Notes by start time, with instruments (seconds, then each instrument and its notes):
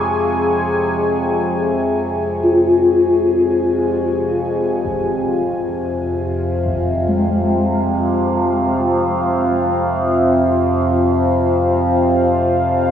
Already playing: synth drone F2 C3, bronze metallophone C4, analog synth pad G#4 G#5 C#6
2.43 bronze metallophone F4
4.83 synth drone F2 C3, analog synth pad F4, impact
5.81 analog synth pad C5
5.92 analog synth pad F5
6.66 impact
7.08 bronze metallophone G#3